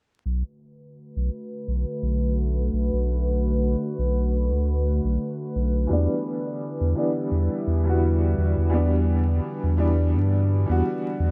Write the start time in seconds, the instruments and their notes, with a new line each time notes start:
0.26 sub bass B1, ambient pad D3 A3 F#4 B4
1.17 sub bass B1
1.68 sub bass B1
2.03 sub bass B1
2.73 sub bass B1
2.93 sub bass B1
3.99 sub bass B1
4.49 sub bass D2
5.05 sub bass B1
5.56 sub bass B1
5.87 sub bass E2, upright piano E3 G3 B3, ambient pad G3 E4
5.93 upright piano D4
6.81 sub bass E2
6.95 upright piano E3 G3 B3 D4
7.32 sub bass E2
7.67 sub bass E2
7.84 upright piano E3 G3 B3
7.89 upright piano F#4
8.38 sub bass E2
8.58 sub bass E2
8.69 upright piano E3 G3 B3
8.74 ambient pad D4, upright piano D4
9.64 sub bass E2
9.77 upright piano E3 G3 B3 D4
10.15 sub bass G2
10.66 sub bass E2, upright piano E3 G3 B3
10.71 upright piano F#4
11.20 sub bass E2